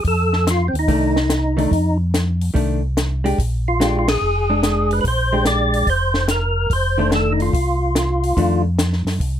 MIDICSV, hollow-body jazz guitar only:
0, 0, Header, 1, 2, 480
1, 0, Start_track
1, 0, Tempo, 416378
1, 56, Time_signature, 4, 2, 24, 8
1, 10835, End_track
2, 0, Start_track
2, 0, Title_t, "Hollow-body jazz guitar"
2, 0, Program_c, 0, 26
2, 1017, Note_on_c, 0, 51, 52
2, 1019, Note_on_c, 0, 57, 53
2, 1032, Note_on_c, 0, 62, 51
2, 1304, Note_off_c, 0, 51, 0
2, 1305, Note_off_c, 0, 57, 0
2, 1312, Note_off_c, 0, 62, 0
2, 1808, Note_on_c, 0, 51, 59
2, 1817, Note_on_c, 0, 57, 63
2, 1825, Note_on_c, 0, 62, 67
2, 1956, Note_off_c, 0, 51, 0
2, 1961, Note_off_c, 0, 57, 0
2, 1965, Note_off_c, 0, 62, 0
2, 2925, Note_on_c, 0, 51, 47
2, 2932, Note_on_c, 0, 57, 49
2, 2941, Note_on_c, 0, 62, 58
2, 3219, Note_off_c, 0, 51, 0
2, 3222, Note_off_c, 0, 57, 0
2, 3227, Note_off_c, 0, 62, 0
2, 3738, Note_on_c, 0, 56, 60
2, 3742, Note_on_c, 0, 62, 57
2, 3752, Note_on_c, 0, 67, 65
2, 3882, Note_off_c, 0, 56, 0
2, 3884, Note_off_c, 0, 62, 0
2, 3889, Note_off_c, 0, 67, 0
2, 4380, Note_on_c, 0, 56, 50
2, 4394, Note_on_c, 0, 62, 59
2, 4394, Note_on_c, 0, 67, 61
2, 4667, Note_off_c, 0, 56, 0
2, 4674, Note_off_c, 0, 62, 0
2, 4674, Note_off_c, 0, 67, 0
2, 5184, Note_on_c, 0, 56, 51
2, 5188, Note_on_c, 0, 62, 60
2, 5789, Note_off_c, 0, 56, 0
2, 5791, Note_off_c, 0, 62, 0
2, 6140, Note_on_c, 0, 56, 62
2, 6149, Note_on_c, 0, 62, 61
2, 6156, Note_on_c, 0, 67, 66
2, 6747, Note_off_c, 0, 56, 0
2, 6751, Note_off_c, 0, 62, 0
2, 6755, Note_off_c, 0, 67, 0
2, 8044, Note_on_c, 0, 51, 59
2, 8057, Note_on_c, 0, 57, 64
2, 8060, Note_on_c, 0, 62, 71
2, 8659, Note_off_c, 0, 51, 0
2, 8665, Note_off_c, 0, 57, 0
2, 8667, Note_off_c, 0, 62, 0
2, 9647, Note_on_c, 0, 51, 50
2, 9659, Note_on_c, 0, 57, 50
2, 9664, Note_on_c, 0, 62, 59
2, 9940, Note_off_c, 0, 51, 0
2, 9946, Note_off_c, 0, 57, 0
2, 9949, Note_off_c, 0, 62, 0
2, 10835, End_track
0, 0, End_of_file